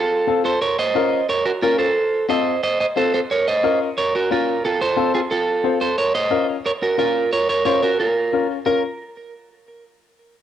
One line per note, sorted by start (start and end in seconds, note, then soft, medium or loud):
0.00 0.42 F4 medium
0.00 0.42 A4 medium
0.27 0.51 C4 medium
0.27 0.51 F4 medium
0.27 0.52 A4 medium
0.45 0.61 A4 medium
0.45 0.61 C5 medium
0.62 0.77 A#4 medium
0.62 0.77 C#5 medium
0.79 1.26 C5 medium
0.79 1.29 D#5 loud
0.95 1.19 C#4 medium
0.95 1.19 F4 medium
0.95 1.19 A#4 loud
1.29 1.44 A#4 medium
1.29 1.45 C#5 medium
1.46 1.51 F#4 medium
1.46 1.50 A#4 medium
1.62 1.86 C#4 medium
1.62 1.78 F4 medium
1.62 1.86 F4 medium
1.62 1.79 A#4 medium
1.62 1.86 A#4 medium
1.79 2.26 A4 medium
1.79 2.26 C5 medium
2.29 2.53 C4 medium
2.29 2.53 F4 medium
2.29 2.53 A4 medium
2.29 2.61 C5 medium
2.29 2.61 D#5 medium
2.63 2.79 C5 medium
2.63 2.79 D#5 medium
2.80 2.85 C5 medium
2.80 2.85 D#5 medium
2.96 3.20 C4 medium
2.96 3.20 F4 medium
2.96 3.20 A4 medium
2.96 3.13 A4 medium
2.96 3.12 C5 medium
3.14 3.19 A4 medium
3.14 3.19 C5 medium
3.31 3.47 A#4 medium
3.31 3.46 C#5 loud
3.48 3.79 C5 medium
3.48 3.79 D#5 loud
3.63 3.87 C#4 medium
3.63 3.87 F4 medium
3.63 3.87 A#4 medium
3.98 4.13 A#4 medium
3.98 4.13 C#5 medium
4.15 4.30 F#4 medium
4.15 4.30 A#4 medium
4.30 4.54 C#4 medium
4.30 4.54 F4 medium
4.30 4.63 F4 medium
4.30 4.54 A#4 medium
4.30 4.62 A#4 medium
4.65 4.81 F4 medium
4.65 4.80 A4 medium
4.81 5.13 A4 medium
4.81 5.12 C5 loud
4.96 5.21 C4 medium
4.96 5.21 F4 medium
4.96 5.21 A4 loud
5.14 5.20 F4 medium
5.14 5.19 G#4 medium
5.31 5.78 F4 medium
5.31 5.78 A4 medium
5.64 5.88 C4 medium
5.64 5.88 F4 medium
5.64 5.88 C5 medium
5.81 5.97 A4 medium
5.81 5.98 C5 medium
5.98 6.14 A#4 medium
5.98 6.14 C#5 medium
6.15 6.46 C5 medium
6.15 6.46 D#5 loud
6.30 6.55 C#4 medium
6.30 6.55 F4 medium
6.30 6.55 A#4 medium
6.66 6.71 A#4 medium
6.66 6.71 C#5 medium
6.82 6.98 F#4 medium
6.82 6.98 A#4 medium
6.98 7.22 C#4 medium
6.98 7.22 F4 medium
6.98 7.30 F4 medium
6.98 7.22 A#4 medium
6.98 7.30 A#4 medium
7.33 7.48 A#4 medium
7.33 7.48 C#5 medium
7.49 7.65 A#4 medium
7.49 7.64 C#5 medium
7.65 7.89 C#4 medium
7.65 7.89 F4 medium
7.65 7.81 A#4 medium
7.65 7.89 C5 medium
7.65 7.81 C#5 medium
7.83 7.99 F#4 medium
7.83 7.98 A#4 medium
8.00 8.47 F4 medium
8.00 8.46 A#4 medium
8.33 8.56 C#4 medium
8.33 8.56 F4 medium
8.33 8.57 A#4 medium
8.66 8.82 C#4 medium
8.66 8.82 F4 medium
8.66 8.82 A#4 medium